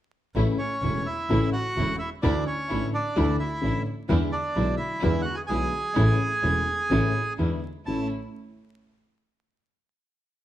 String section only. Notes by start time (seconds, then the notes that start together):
0.36 A3 C#4 E4
0.82 A3 C#4 E4
1.30 A3 C#4 E4
1.77 A3 C#4 E4
2.23 A3 D4 E4
2.70 A3 D4 E4
3.15 A3 D4 E4
3.62 A3 D4 E4
4.09 G#3 D4 E4
4.55 G#3 D4 E4
5.01 G#3 D4 E4
5.49 G#3 D4 E4
5.94 A3 C#4 E4
6.42 A3 C#4 E4
6.90 A3 C#4 E4
7.37 G#3 D4 E4
7.86 A3 C#4 E4